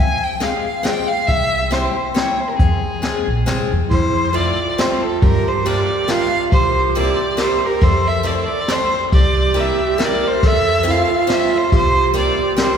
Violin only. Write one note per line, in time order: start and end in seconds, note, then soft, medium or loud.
0.00 0.25 G#5 loud
0.23 0.45 G5 medium
0.43 0.86 F5 medium
0.84 1.10 G5 medium
1.08 1.29 F5 loud
1.27 1.74 E5 loud
1.73 2.16 C5 medium
2.15 2.41 C#5 medium
2.40 2.49 C5 medium
2.48 2.57 A#4 medium
2.58 3.66 G#4 medium
3.90 4.37 C5 loud
4.35 4.81 D5 medium
4.80 5.04 C5 medium
5.02 5.22 A4 medium
5.23 5.49 A#4 loud
5.47 5.68 C5 medium
5.66 6.12 D5 medium
6.10 6.43 F5 loud
6.52 6.93 C5 medium
6.98 7.42 D5 medium
7.40 7.67 C5 medium
7.66 7.84 A#4 medium
7.83 8.09 C5 loud
8.08 8.28 E5 medium
8.27 8.33 D5 medium
8.32 8.47 C5 medium
8.45 8.74 D5 medium
8.72 9.04 C5 loud
9.14 9.62 D5 medium
9.60 10.06 E5 medium
10.05 10.29 D5 medium
10.27 10.49 C5 loud
10.47 10.92 E5 loud
10.91 11.35 F5 medium
11.33 11.59 E5 medium
11.57 11.74 C5 loud
11.76 12.14 C5 loud
12.17 12.56 D5 medium
12.60 12.78 C5 medium